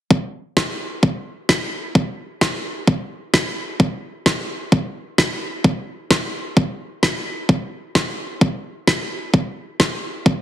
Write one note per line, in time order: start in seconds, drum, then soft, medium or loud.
0.11 kick loud
0.57 kick loud
0.57 snare loud
1.03 kick loud
1.49 kick loud
1.49 snare loud
1.95 kick loud
2.41 kick loud
2.41 snare loud
2.87 kick loud
3.34 kick loud
3.34 snare loud
3.80 kick loud
4.26 kick loud
4.26 snare loud
4.72 kick loud
5.18 kick loud
5.18 snare loud
5.64 kick loud
6.11 kick loud
6.11 snare loud
6.57 kick loud
7.03 kick loud
7.03 snare loud
7.49 kick loud
7.95 kick loud
7.95 snare loud
8.41 kick loud
8.87 kick loud
8.87 snare loud
9.34 kick loud
9.80 kick loud
9.80 snare loud
10.26 kick loud